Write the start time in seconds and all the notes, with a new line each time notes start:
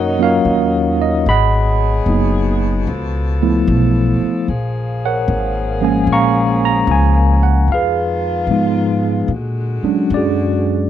Already playing: F#2 D#3 A#3 C#4 D#4 F#4 A#4 C#5 D#5 F#5
0.19 F#3 A#3 C#4 F4 F5
0.24 A#4 C#5
0.45 D#2
1.02 D#5
1.26 G#1 B2 F#3 G#4 D#5 B5
1.30 F#5
2.06 F#1 F#3 A#3 B3 D#4
2.87 C#2 F3 A4
3.42 F3 A3 B3 E4
3.68 B1
4.21 muted upright bass stroke
4.48 A#1 A#3 G#4
5.05 A#4 C#5 F#5
5.28 G#1
5.81 F3 G#3 A#3 C#4 G#5
6.07 A#1
6.13 F5 A#5 C#6
6.65 A#5
6.87 C#2
6.91 G#5
7.43 F#5
7.67 F2 D#3 G#3 F4
7.72 G#4 B4 F5
8.47 G#2 F3 G#3 B3
8.52 D#4
9.28 A#2
9.32 D3 F#4
9.83 F#3 G#3 C#4 D4, muted upright bass stroke
10.10 F#2
10.14 F#4 G#4 D5